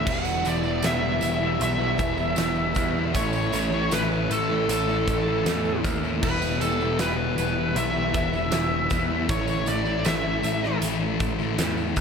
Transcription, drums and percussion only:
0.07 kick loud
0.07 crash loud
0.25 tambourine medium
0.45 closed hi-hat medium
0.45 tambourine medium
0.63 tambourine soft
0.83 snare loud
0.83 closed hi-hat medium
0.83 tambourine loud
1.21 closed hi-hat medium
1.21 tambourine medium
1.60 closed hi-hat medium
1.60 tambourine soft
1.98 kick medium
1.98 closed hi-hat medium
1.98 tambourine soft
2.18 tambourine soft
2.36 snare loud
2.36 closed hi-hat loud
2.36 tambourine medium
2.55 tambourine soft
2.75 kick medium
2.75 closed hi-hat medium
2.75 tambourine medium
3.14 kick loud
3.14 closed hi-hat medium
3.14 tambourine soft
3.33 tambourine medium
3.52 closed hi-hat medium
3.52 tambourine medium
3.72 tambourine soft
3.91 snare loud
3.91 closed hi-hat loud
3.91 tambourine loud
4.11 tambourine soft
4.31 closed hi-hat medium
4.31 tambourine medium
4.69 closed hi-hat loud
4.69 tambourine soft
4.89 tambourine soft
5.08 kick medium
5.08 closed hi-hat medium
5.08 tambourine soft
5.46 snare loud
5.46 closed hi-hat loud
5.46 tambourine medium
5.65 tambourine soft
5.84 kick medium
5.84 closed hi-hat medium
5.84 tambourine medium
6.04 tambourine soft
6.23 kick loud
6.23 crash medium
6.42 tambourine medium
6.61 closed hi-hat medium
6.61 tambourine medium
6.81 tambourine soft
6.99 snare loud
6.99 closed hi-hat medium
6.99 tambourine loud
7.38 closed hi-hat medium
7.38 tambourine medium
7.76 closed hi-hat medium
7.76 tambourine soft
8.14 kick medium
8.14 closed hi-hat medium
8.14 tambourine soft
8.33 tambourine soft
8.52 snare loud
8.52 closed hi-hat loud
8.52 tambourine loud
8.90 kick medium
8.90 closed hi-hat medium
8.90 tambourine medium
9.29 kick loud
9.29 closed hi-hat loud
9.48 tambourine medium
9.66 closed hi-hat medium
9.66 tambourine medium
9.86 tambourine soft
10.05 snare loud
10.05 closed hi-hat loud
10.05 tambourine medium
10.43 closed hi-hat medium
10.43 tambourine medium
10.64 snare soft
10.81 closed hi-hat loud
10.81 tambourine soft
11.20 kick medium
11.20 closed hi-hat medium
11.20 tambourine soft
11.39 tambourine soft
11.59 snare loud
11.59 closed hi-hat loud
11.59 tambourine medium
11.77 tambourine soft
11.96 kick medium
11.96 closed hi-hat medium
11.96 tambourine medium

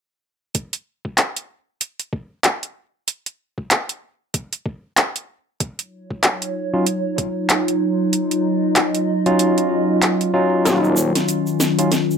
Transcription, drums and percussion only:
0.55 kick loud
0.55 closed hi-hat medium
0.73 closed hi-hat soft
1.05 kick medium
1.18 clap loud
1.18 closed hi-hat medium
1.36 closed hi-hat soft
1.81 closed hi-hat medium
2.00 closed hi-hat soft
2.13 kick loud
2.44 clap loud
2.44 closed hi-hat medium
2.63 closed hi-hat soft
3.08 closed hi-hat medium
3.26 closed hi-hat soft
3.58 kick medium
3.71 clap loud
3.71 closed hi-hat medium
3.89 closed hi-hat soft
4.34 kick loud
4.34 closed hi-hat medium
4.53 closed hi-hat medium
4.66 kick loud
4.97 clap loud
4.97 closed hi-hat medium
5.16 closed hi-hat soft
5.60 kick loud
5.60 closed hi-hat medium
5.79 closed hi-hat soft
6.11 kick medium
6.23 clap loud
6.23 closed hi-hat medium
6.42 closed hi-hat soft
6.86 closed hi-hat medium
7.18 kick loud
7.18 closed hi-hat medium
7.50 clap loud
7.50 closed hi-hat medium
7.68 closed hi-hat soft
8.13 closed hi-hat medium
8.31 closed hi-hat soft
8.76 clap loud
8.76 closed hi-hat medium
8.95 closed hi-hat soft
9.26 closed hi-hat soft
9.39 closed hi-hat medium
9.58 closed hi-hat soft
10.02 clap loud
10.02 closed hi-hat medium
10.21 closed hi-hat soft
10.66 snare soft
10.66 closed hi-hat soft
10.66 shaker medium
10.84 shaker soft
10.97 shaker medium
11.15 snare soft
11.15 closed hi-hat medium
11.15 shaker soft
11.29 closed hi-hat medium
11.29 shaker soft
11.47 shaker soft
11.60 snare soft
11.60 shaker medium
11.79 closed hi-hat medium
11.79 shaker soft
11.92 snare medium
11.92 closed hi-hat medium
11.92 shaker soft
12.11 shaker soft

